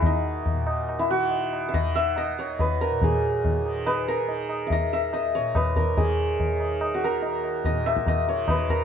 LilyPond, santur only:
\new Staff \with { instrumentName = "Santur" } { \time 7/4 \tempo 4 = 142 ees'4. r8. fes'16 ges'4~ ges'16 r32 fes''32 ees''8 fes''8 ees''8 des''8 ces''8 bes'8 | aes'4. r8 ces''8 bes'4 r16. fes''32 ees''8 fes''8 ees''8 des''8 ces''8 bes'8 | aes'4. r8. ges'16 bes'4~ bes'16 r16 ees''8 fes''8 ees''8 des''8 ces''8 bes'8 | }